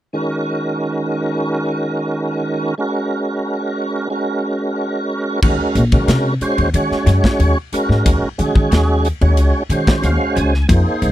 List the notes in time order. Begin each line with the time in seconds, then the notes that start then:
0.13 D#3 G#3 C#4 F#4 A#4
2.78 G#3 C#4 F#4 A#4
4.10 G#3 C#4 F#4 A#4
5.42 D#2 G#3 C#4 F#4 A#4, kick, crash
5.75 A#1, hi-hat pedal, ride
5.92 D#3 G#3 C#4 F#4 A#4, kick, ride
6.08 C3, snare, hi-hat pedal, ride
6.41 G#3 C#4 F#4 C5, muted upright bass stroke, hi-hat pedal, ride
6.58 D#2, ride
6.74 D#3 G#3 C#4 F#4 C#5, hi-hat pedal, ride
6.91 muted upright bass stroke, snare
7.06 F#2, snare, hi-hat pedal, ride
7.24 kick, snare
7.39 D#2, hi-hat pedal, ride
7.72 G#3 C#4 F#4 A#4, muted upright bass stroke, hi-hat pedal, ride
7.89 G#2, snare
8.06 D#2, kick, hi-hat pedal, ride
8.22 muted upright bass stroke
8.38 D#3 G#3 C#4 F#4 G#4, hi-hat pedal, ride
8.55 D#3, kick
8.71 D#2, snare, hi-hat pedal, ride
9.05 hi-hat pedal, ride
9.21 D#2 G#3 C#4 F#4 C#5, ride
9.37 C#2, hi-hat pedal, ride
9.69 D#3 G#3 C#4 F#4 C5, hi-hat pedal, ride
9.87 kick, snare, ride
10.03 D#2 F5, hi-hat pedal, ride
10.36 C#2 G#5, hi-hat pedal, ride
10.54 snare
10.68 F2 A#3 D#4 G#4 C5, kick, hi-hat pedal, ride
11.02 C2, hi-hat pedal, ride